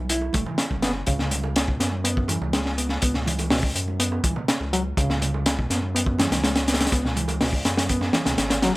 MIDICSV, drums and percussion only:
0, 0, Header, 1, 2, 480
1, 0, Start_track
1, 0, Tempo, 487805
1, 1051, Time_signature, 4, 2, 24, 8
1, 8628, End_track
2, 0, Start_track
2, 0, Title_t, "Drums"
2, 92, Note_on_c, 9, 42, 86
2, 191, Note_off_c, 9, 42, 0
2, 210, Note_on_c, 9, 60, 47
2, 309, Note_off_c, 9, 60, 0
2, 324, Note_on_c, 9, 63, 90
2, 334, Note_on_c, 9, 42, 70
2, 339, Note_on_c, 9, 36, 105
2, 422, Note_off_c, 9, 63, 0
2, 433, Note_off_c, 9, 42, 0
2, 437, Note_off_c, 9, 36, 0
2, 450, Note_on_c, 9, 60, 33
2, 457, Note_on_c, 9, 64, 100
2, 549, Note_off_c, 9, 60, 0
2, 555, Note_off_c, 9, 64, 0
2, 569, Note_on_c, 9, 38, 110
2, 573, Note_on_c, 9, 42, 88
2, 668, Note_off_c, 9, 38, 0
2, 672, Note_off_c, 9, 42, 0
2, 689, Note_on_c, 9, 60, 33
2, 697, Note_on_c, 9, 36, 83
2, 697, Note_on_c, 9, 63, 91
2, 788, Note_off_c, 9, 60, 0
2, 795, Note_off_c, 9, 36, 0
2, 795, Note_off_c, 9, 63, 0
2, 811, Note_on_c, 9, 42, 80
2, 815, Note_on_c, 9, 38, 98
2, 910, Note_off_c, 9, 42, 0
2, 913, Note_off_c, 9, 38, 0
2, 1048, Note_on_c, 9, 42, 80
2, 1059, Note_on_c, 9, 36, 105
2, 1146, Note_off_c, 9, 42, 0
2, 1157, Note_off_c, 9, 36, 0
2, 1174, Note_on_c, 9, 38, 56
2, 1272, Note_off_c, 9, 38, 0
2, 1291, Note_on_c, 9, 42, 65
2, 1292, Note_on_c, 9, 63, 94
2, 1292, Note_on_c, 9, 64, 75
2, 1389, Note_off_c, 9, 42, 0
2, 1390, Note_off_c, 9, 63, 0
2, 1390, Note_off_c, 9, 64, 0
2, 1413, Note_on_c, 9, 60, 67
2, 1511, Note_off_c, 9, 60, 0
2, 1532, Note_on_c, 9, 42, 88
2, 1539, Note_on_c, 9, 38, 111
2, 1631, Note_off_c, 9, 42, 0
2, 1638, Note_off_c, 9, 38, 0
2, 1654, Note_on_c, 9, 36, 86
2, 1753, Note_off_c, 9, 36, 0
2, 1774, Note_on_c, 9, 38, 51
2, 1775, Note_on_c, 9, 42, 76
2, 1873, Note_off_c, 9, 38, 0
2, 1873, Note_off_c, 9, 42, 0
2, 1889, Note_on_c, 9, 63, 78
2, 1987, Note_off_c, 9, 63, 0
2, 2014, Note_on_c, 9, 42, 83
2, 2113, Note_off_c, 9, 42, 0
2, 2136, Note_on_c, 9, 36, 98
2, 2235, Note_off_c, 9, 36, 0
2, 2245, Note_on_c, 9, 60, 65
2, 2248, Note_on_c, 9, 63, 83
2, 2253, Note_on_c, 9, 42, 66
2, 2343, Note_off_c, 9, 60, 0
2, 2346, Note_off_c, 9, 63, 0
2, 2351, Note_off_c, 9, 42, 0
2, 2378, Note_on_c, 9, 64, 86
2, 2476, Note_off_c, 9, 64, 0
2, 2492, Note_on_c, 9, 38, 110
2, 2492, Note_on_c, 9, 42, 85
2, 2591, Note_off_c, 9, 38, 0
2, 2591, Note_off_c, 9, 42, 0
2, 2614, Note_on_c, 9, 38, 53
2, 2712, Note_off_c, 9, 38, 0
2, 2735, Note_on_c, 9, 42, 67
2, 2834, Note_off_c, 9, 42, 0
2, 2846, Note_on_c, 9, 38, 44
2, 2945, Note_off_c, 9, 38, 0
2, 2970, Note_on_c, 9, 42, 93
2, 2978, Note_on_c, 9, 36, 116
2, 3068, Note_off_c, 9, 42, 0
2, 3076, Note_off_c, 9, 36, 0
2, 3093, Note_on_c, 9, 38, 46
2, 3191, Note_off_c, 9, 38, 0
2, 3209, Note_on_c, 9, 63, 89
2, 3218, Note_on_c, 9, 64, 81
2, 3222, Note_on_c, 9, 42, 70
2, 3308, Note_off_c, 9, 63, 0
2, 3317, Note_off_c, 9, 64, 0
2, 3320, Note_off_c, 9, 42, 0
2, 3332, Note_on_c, 9, 42, 44
2, 3338, Note_on_c, 9, 60, 61
2, 3430, Note_off_c, 9, 42, 0
2, 3436, Note_off_c, 9, 60, 0
2, 3449, Note_on_c, 9, 38, 113
2, 3453, Note_on_c, 9, 46, 78
2, 3547, Note_off_c, 9, 38, 0
2, 3551, Note_off_c, 9, 46, 0
2, 3572, Note_on_c, 9, 36, 91
2, 3671, Note_off_c, 9, 36, 0
2, 3696, Note_on_c, 9, 42, 68
2, 3794, Note_off_c, 9, 42, 0
2, 3815, Note_on_c, 9, 63, 75
2, 3914, Note_off_c, 9, 63, 0
2, 3933, Note_on_c, 9, 42, 90
2, 4032, Note_off_c, 9, 42, 0
2, 4053, Note_on_c, 9, 60, 56
2, 4152, Note_off_c, 9, 60, 0
2, 4170, Note_on_c, 9, 36, 96
2, 4170, Note_on_c, 9, 42, 66
2, 4171, Note_on_c, 9, 63, 76
2, 4268, Note_off_c, 9, 42, 0
2, 4269, Note_off_c, 9, 36, 0
2, 4270, Note_off_c, 9, 63, 0
2, 4291, Note_on_c, 9, 60, 39
2, 4293, Note_on_c, 9, 64, 84
2, 4389, Note_off_c, 9, 60, 0
2, 4391, Note_off_c, 9, 64, 0
2, 4412, Note_on_c, 9, 38, 127
2, 4412, Note_on_c, 9, 42, 93
2, 4510, Note_off_c, 9, 38, 0
2, 4511, Note_off_c, 9, 42, 0
2, 4533, Note_on_c, 9, 60, 39
2, 4632, Note_off_c, 9, 60, 0
2, 4656, Note_on_c, 9, 42, 72
2, 4754, Note_off_c, 9, 42, 0
2, 4893, Note_on_c, 9, 36, 124
2, 4895, Note_on_c, 9, 42, 89
2, 4992, Note_off_c, 9, 36, 0
2, 4994, Note_off_c, 9, 42, 0
2, 5017, Note_on_c, 9, 38, 55
2, 5115, Note_off_c, 9, 38, 0
2, 5132, Note_on_c, 9, 64, 82
2, 5135, Note_on_c, 9, 42, 73
2, 5141, Note_on_c, 9, 63, 84
2, 5230, Note_off_c, 9, 64, 0
2, 5234, Note_off_c, 9, 42, 0
2, 5239, Note_off_c, 9, 63, 0
2, 5257, Note_on_c, 9, 60, 66
2, 5355, Note_off_c, 9, 60, 0
2, 5371, Note_on_c, 9, 42, 88
2, 5375, Note_on_c, 9, 38, 106
2, 5470, Note_off_c, 9, 42, 0
2, 5474, Note_off_c, 9, 38, 0
2, 5498, Note_on_c, 9, 36, 99
2, 5596, Note_off_c, 9, 36, 0
2, 5610, Note_on_c, 9, 38, 51
2, 5614, Note_on_c, 9, 42, 66
2, 5708, Note_off_c, 9, 38, 0
2, 5712, Note_off_c, 9, 42, 0
2, 5729, Note_on_c, 9, 63, 74
2, 5827, Note_off_c, 9, 63, 0
2, 5863, Note_on_c, 9, 42, 83
2, 5961, Note_off_c, 9, 42, 0
2, 5967, Note_on_c, 9, 36, 91
2, 6066, Note_off_c, 9, 36, 0
2, 6086, Note_on_c, 9, 60, 65
2, 6087, Note_on_c, 9, 63, 84
2, 6096, Note_on_c, 9, 38, 109
2, 6096, Note_on_c, 9, 42, 85
2, 6184, Note_off_c, 9, 60, 0
2, 6185, Note_off_c, 9, 63, 0
2, 6194, Note_off_c, 9, 38, 0
2, 6194, Note_off_c, 9, 42, 0
2, 6218, Note_on_c, 9, 64, 90
2, 6219, Note_on_c, 9, 38, 100
2, 6219, Note_on_c, 9, 42, 85
2, 6316, Note_off_c, 9, 64, 0
2, 6317, Note_off_c, 9, 38, 0
2, 6318, Note_off_c, 9, 42, 0
2, 6333, Note_on_c, 9, 38, 110
2, 6339, Note_on_c, 9, 42, 81
2, 6431, Note_off_c, 9, 38, 0
2, 6438, Note_off_c, 9, 42, 0
2, 6450, Note_on_c, 9, 42, 73
2, 6452, Note_on_c, 9, 38, 114
2, 6548, Note_off_c, 9, 42, 0
2, 6550, Note_off_c, 9, 38, 0
2, 6571, Note_on_c, 9, 42, 67
2, 6573, Note_on_c, 9, 38, 90
2, 6632, Note_off_c, 9, 38, 0
2, 6632, Note_on_c, 9, 38, 91
2, 6634, Note_off_c, 9, 42, 0
2, 6634, Note_on_c, 9, 42, 72
2, 6695, Note_off_c, 9, 42, 0
2, 6695, Note_on_c, 9, 42, 66
2, 6697, Note_off_c, 9, 38, 0
2, 6697, Note_on_c, 9, 38, 96
2, 6755, Note_off_c, 9, 42, 0
2, 6755, Note_on_c, 9, 42, 68
2, 6757, Note_off_c, 9, 38, 0
2, 6757, Note_on_c, 9, 38, 96
2, 6810, Note_off_c, 9, 42, 0
2, 6810, Note_on_c, 9, 42, 80
2, 6812, Note_on_c, 9, 36, 112
2, 6855, Note_off_c, 9, 38, 0
2, 6909, Note_off_c, 9, 42, 0
2, 6910, Note_off_c, 9, 36, 0
2, 6942, Note_on_c, 9, 38, 47
2, 7040, Note_off_c, 9, 38, 0
2, 7044, Note_on_c, 9, 63, 93
2, 7050, Note_on_c, 9, 64, 86
2, 7052, Note_on_c, 9, 42, 61
2, 7142, Note_off_c, 9, 63, 0
2, 7149, Note_off_c, 9, 64, 0
2, 7150, Note_off_c, 9, 42, 0
2, 7162, Note_on_c, 9, 60, 73
2, 7168, Note_on_c, 9, 42, 46
2, 7260, Note_off_c, 9, 60, 0
2, 7267, Note_off_c, 9, 42, 0
2, 7288, Note_on_c, 9, 38, 115
2, 7288, Note_on_c, 9, 46, 87
2, 7387, Note_off_c, 9, 38, 0
2, 7387, Note_off_c, 9, 46, 0
2, 7407, Note_on_c, 9, 36, 97
2, 7505, Note_off_c, 9, 36, 0
2, 7526, Note_on_c, 9, 42, 80
2, 7529, Note_on_c, 9, 38, 104
2, 7624, Note_off_c, 9, 42, 0
2, 7628, Note_off_c, 9, 38, 0
2, 7650, Note_on_c, 9, 38, 106
2, 7651, Note_on_c, 9, 63, 89
2, 7661, Note_on_c, 9, 42, 86
2, 7749, Note_off_c, 9, 38, 0
2, 7749, Note_off_c, 9, 63, 0
2, 7759, Note_off_c, 9, 42, 0
2, 7766, Note_on_c, 9, 42, 86
2, 7769, Note_on_c, 9, 36, 97
2, 7864, Note_off_c, 9, 42, 0
2, 7868, Note_off_c, 9, 36, 0
2, 7883, Note_on_c, 9, 60, 60
2, 7888, Note_on_c, 9, 38, 51
2, 7981, Note_off_c, 9, 60, 0
2, 7987, Note_off_c, 9, 38, 0
2, 8002, Note_on_c, 9, 38, 118
2, 8010, Note_on_c, 9, 63, 85
2, 8012, Note_on_c, 9, 42, 78
2, 8100, Note_off_c, 9, 38, 0
2, 8108, Note_off_c, 9, 63, 0
2, 8110, Note_off_c, 9, 42, 0
2, 8121, Note_on_c, 9, 64, 97
2, 8124, Note_on_c, 9, 60, 39
2, 8126, Note_on_c, 9, 38, 103
2, 8131, Note_on_c, 9, 42, 80
2, 8220, Note_off_c, 9, 64, 0
2, 8222, Note_off_c, 9, 60, 0
2, 8225, Note_off_c, 9, 38, 0
2, 8230, Note_off_c, 9, 42, 0
2, 8245, Note_on_c, 9, 42, 85
2, 8246, Note_on_c, 9, 38, 111
2, 8343, Note_off_c, 9, 42, 0
2, 8345, Note_off_c, 9, 38, 0
2, 8367, Note_on_c, 9, 38, 110
2, 8369, Note_on_c, 9, 60, 40
2, 8370, Note_on_c, 9, 42, 86
2, 8465, Note_off_c, 9, 38, 0
2, 8467, Note_off_c, 9, 60, 0
2, 8469, Note_off_c, 9, 42, 0
2, 8486, Note_on_c, 9, 38, 108
2, 8488, Note_on_c, 9, 42, 86
2, 8585, Note_off_c, 9, 38, 0
2, 8586, Note_off_c, 9, 42, 0
2, 8628, End_track
0, 0, End_of_file